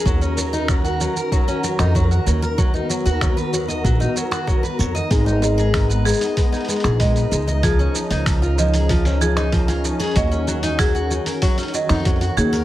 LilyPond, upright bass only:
\new Staff \with { instrumentName = "Upright bass" } { \clef bass \time 4/4 \key dis \minor \tempo 4 = 95 dis,4. r4 r16 eis,8 r16 dis,8~ | dis,16 r8 dis,4~ dis,16 ais,,16 r4 r16 eis,16 r16 | gis,,4. r4 r16 ais,,8 r16 cis,8~ | cis,16 r8 cis,2~ cis,8. r8 |
dis,4. r4 r16 eis,8 r16 dis,8 | }